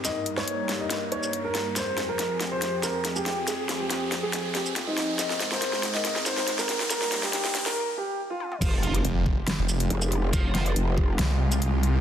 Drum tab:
CC |----------------|----------------|----------------|----------------|
HH |x-x-x-x-x-x-x-x-|x-x-x-x-x-x-x-x-|x-x-x-x-x-x-x-x-|x-x-x-x-x-x-x-x-|
SH |x----------x----|x---------x--x--|x----------x----|x---------x--x--|
SD |o--o--o-o-----o-|o-o-o-o-o-o-o-o-|o-o-o-o-o-o-o-o-|oooooooooooooooo|
T1 |----------------|----------------|----------------|----------------|
T2 |----------------|----------------|----------------|----------------|
BD |----------------|----------------|----------------|----------------|

CC |----------------|x---------------|----------------|
HH |x-x-x-x---------|x-xxx---x--xx-x-|x-xxx---x--xx-x-|
SH |x---------------|x---------x--x--|x----------x----|
SD |oooooooo--------|--------o-------|--o-----o-------|
T1 |--------------o-|----------------|----------------|
T2 |---------------o|----------------|----------------|
BD |----------------|o-----o---------|o-----o---------|